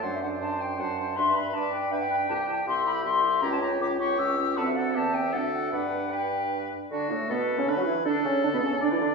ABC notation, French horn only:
X:1
M:3/4
L:1/16
Q:1/4=158
K:G
V:1 name="French horn"
D2 D2 D2 D2 D2 D2 | D2 D2 D2 D2 D2 D2 | E2 E2 E2 E2 E2 E2 | ^C2 C2 C2 C2 C2 C2 |
C4 B,2 C2 D4 | D4 D6 z2 | [K:D] D2 A,2 B,3 C D F E2 | D2 C2 D B, C2 D E D2 |]